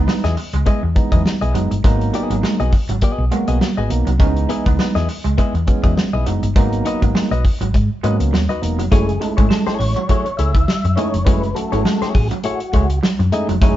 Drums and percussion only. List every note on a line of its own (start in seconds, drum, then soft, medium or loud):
0.08 snare medium
0.24 snare soft
0.24 closed hi-hat soft
0.37 open hi-hat medium
0.53 closed hi-hat medium
0.66 kick medium
0.66 closed hi-hat medium
0.96 kick medium
0.96 closed hi-hat medium
1.12 kick medium
1.12 closed hi-hat medium
1.26 snare loud
1.42 closed hi-hat soft
1.55 closed hi-hat medium
1.71 closed hi-hat soft
1.84 kick loud
1.84 closed hi-hat medium
2.01 closed hi-hat soft
2.14 closed hi-hat medium
2.31 closed hi-hat medium
2.43 snare loud
2.60 closed hi-hat soft
2.72 kick medium
2.72 open hi-hat medium
2.89 closed hi-hat medium
3.01 kick medium
3.01 closed hi-hat medium
3.32 closed hi-hat medium
3.48 closed hi-hat medium
3.61 snare loud
3.90 closed hi-hat medium
4.07 closed hi-hat soft
4.20 kick loud
4.20 closed hi-hat medium
4.36 closed hi-hat soft
4.50 closed hi-hat medium
4.66 kick medium
4.66 closed hi-hat soft
4.79 snare loud
4.96 snare soft
4.96 closed hi-hat soft
5.09 open hi-hat medium
5.25 closed hi-hat medium
5.38 kick medium
5.38 closed hi-hat medium
5.55 closed hi-hat soft
5.67 kick medium
5.67 closed hi-hat medium
5.84 kick medium
5.84 closed hi-hat medium
5.97 snare loud
6.26 closed hi-hat medium
6.43 closed hi-hat medium
6.56 kick loud
6.56 closed hi-hat medium
6.72 closed hi-hat soft
6.86 closed hi-hat medium
7.02 kick medium
7.02 closed hi-hat soft
7.15 snare loud
7.32 closed hi-hat soft
7.45 kick medium
7.45 open hi-hat medium
7.61 closed hi-hat medium
7.74 kick medium
7.74 closed hi-hat medium
8.04 closed hi-hat medium
8.20 closed hi-hat medium
8.34 snare medium
8.50 closed hi-hat soft
8.63 closed hi-hat medium
8.79 closed hi-hat medium
8.92 kick loud
8.92 closed hi-hat medium
9.09 closed hi-hat soft
9.22 closed hi-hat medium
9.38 kick medium
9.38 closed hi-hat medium
9.51 snare loud
9.68 snare soft
9.68 closed hi-hat soft
9.80 open hi-hat medium
9.96 closed hi-hat medium
10.09 kick medium
10.09 closed hi-hat medium
10.26 closed hi-hat soft
10.39 closed hi-hat medium
10.55 kick medium
10.55 closed hi-hat medium
10.68 snare loud
10.85 closed hi-hat soft
10.98 closed hi-hat medium
11.14 closed hi-hat medium
11.27 kick loud
11.27 closed hi-hat loud
11.43 closed hi-hat soft
11.56 closed hi-hat medium
11.73 closed hi-hat soft
11.85 snare medium
12.02 snare soft
12.02 closed hi-hat soft
12.15 kick medium
12.15 open hi-hat medium
12.31 closed hi-hat medium
12.44 closed hi-hat medium
12.60 closed hi-hat soft
12.73 kick medium
12.73 closed hi-hat medium
12.90 closed hi-hat medium
13.03 snare loud
13.20 closed hi-hat soft
13.32 closed hi-hat medium
13.49 closed hi-hat soft
13.62 kick loud
13.62 closed hi-hat loud